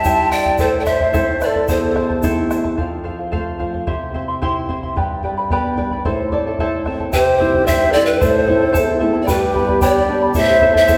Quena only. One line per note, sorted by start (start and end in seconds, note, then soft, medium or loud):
0.00 0.34 E5 medium
0.33 0.62 D5 medium
0.61 0.81 A4 medium
0.81 0.88 D5 medium
0.87 1.44 C5 medium
1.43 1.69 A4 medium
1.43 1.47 B4 medium
1.69 2.24 A4 medium
7.14 7.67 G4 medium
7.65 7.71 D5 medium
7.70 7.93 C5 medium
7.91 8.05 A4 medium
8.05 9.01 A4 medium
9.21 9.30 A4 medium
9.28 9.84 G4 medium
9.84 10.37 G4 medium
10.39 10.75 C5 loud
10.77 10.98 C5 medium